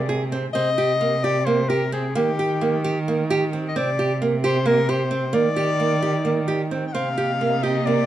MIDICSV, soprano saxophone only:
0, 0, Header, 1, 2, 480
1, 0, Start_track
1, 0, Key_signature, -3, "minor"
1, 0, Tempo, 457317
1, 587, Time_signature, 7, 3, 24, 8
1, 8461, End_track
2, 0, Start_track
2, 0, Title_t, "Soprano saxophone"
2, 0, Program_c, 0, 64
2, 0, Note_on_c, 0, 74, 98
2, 295, Note_off_c, 0, 74, 0
2, 560, Note_on_c, 0, 75, 91
2, 1296, Note_on_c, 0, 74, 79
2, 1311, Note_off_c, 0, 75, 0
2, 1526, Note_on_c, 0, 72, 76
2, 1542, Note_off_c, 0, 74, 0
2, 1768, Note_on_c, 0, 70, 67
2, 1784, Note_off_c, 0, 72, 0
2, 2020, Note_off_c, 0, 70, 0
2, 2027, Note_on_c, 0, 68, 62
2, 2255, Note_off_c, 0, 68, 0
2, 2270, Note_on_c, 0, 67, 78
2, 3191, Note_off_c, 0, 67, 0
2, 3866, Note_on_c, 0, 75, 64
2, 3952, Note_on_c, 0, 74, 93
2, 3968, Note_off_c, 0, 75, 0
2, 4426, Note_off_c, 0, 74, 0
2, 4662, Note_on_c, 0, 72, 79
2, 4898, Note_on_c, 0, 70, 79
2, 4914, Note_off_c, 0, 72, 0
2, 5135, Note_on_c, 0, 72, 74
2, 5151, Note_off_c, 0, 70, 0
2, 5607, Note_on_c, 0, 74, 84
2, 5623, Note_off_c, 0, 72, 0
2, 7048, Note_off_c, 0, 74, 0
2, 7209, Note_on_c, 0, 79, 59
2, 7278, Note_on_c, 0, 77, 83
2, 7294, Note_off_c, 0, 79, 0
2, 8012, Note_on_c, 0, 75, 74
2, 8027, Note_off_c, 0, 77, 0
2, 8246, Note_on_c, 0, 74, 79
2, 8262, Note_off_c, 0, 75, 0
2, 8461, Note_off_c, 0, 74, 0
2, 8461, End_track
0, 0, End_of_file